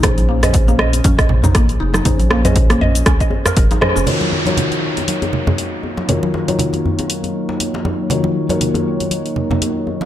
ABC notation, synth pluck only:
X:1
M:4/4
L:1/16
Q:"Swing 16ths" 1/4=119
K:Ebdor
V:1 name="Synth pluck"
E z B, e z B, e z D e z E B, z E E | E z B, e z B, e z D e z B B E e D | z16 | z16 |
z16 |]